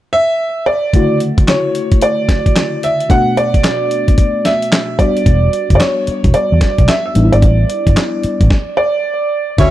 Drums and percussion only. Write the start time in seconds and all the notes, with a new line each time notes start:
0.94 kick, closed hi-hat
1.20 closed hi-hat
1.38 kick, closed hi-hat
1.48 snare, clap, closed hi-hat
1.75 closed hi-hat
1.92 kick, closed hi-hat
2.02 closed hi-hat
2.29 kick, snare, closed hi-hat
2.46 kick, closed hi-hat
2.56 snare, clap, closed hi-hat
2.83 closed hi-hat
3.00 closed hi-hat
3.10 kick, closed hi-hat
3.37 closed hi-hat
3.54 kick, closed hi-hat
3.64 snare, clap, closed hi-hat
3.91 closed hi-hat
4.08 kick, closed hi-hat
4.18 kick, closed hi-hat
4.45 snare, closed hi-hat
4.62 closed hi-hat
4.72 snare, clap, closed hi-hat
4.99 kick, closed hi-hat
5.17 closed hi-hat
5.26 kick, closed hi-hat
5.53 closed hi-hat
5.70 kick, closed hi-hat
5.80 snare, clap, closed hi-hat
6.07 closed hi-hat
6.24 kick, closed hi-hat
6.34 closed hi-hat
6.61 kick, snare, closed hi-hat
6.78 kick, closed hi-hat
6.88 snare, clap, closed hi-hat
7.15 closed hi-hat
7.33 closed hi-hat
7.42 kick, closed hi-hat
7.70 closed hi-hat
7.87 kick, closed hi-hat
7.97 snare, clap, closed hi-hat
8.23 closed hi-hat
8.41 kick, closed hi-hat
8.50 kick, snare
9.58 kick, closed hi-hat